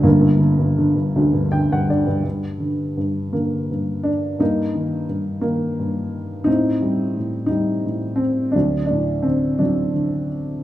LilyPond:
<<
  \new Staff \with { instrumentName = "Upright piano" } { \time 6/8 \key g \minor \tempo 4. = 57 bes2 g''16 fis''16 d''8 | r4. bes4 d'8 | ees'4 r8 bes4. | ees'4. ees'4 c'8 |
d'8 d'8 c'8 d'4. | }
  \new Staff \with { instrumentName = "Upright piano" } { \clef bass \time 6/8 \key g \minor << { d2 r4 | r2. | bes4. r4. | c'4. r4. |
fis4. fis4. | } \\ { <g,, g,>16 g,16 d16 g,16 d16 g,16 <d, d>16 g,16 d16 g,16 d16 g,16 | g,8 d8 g,8 d8 g,4 | g,8 ees8 g,8 ees8 g,4 | a,8 g8 a,8 g8 a,4 |
d,8 a,8 d8 fis8 d4 | } >> }
>>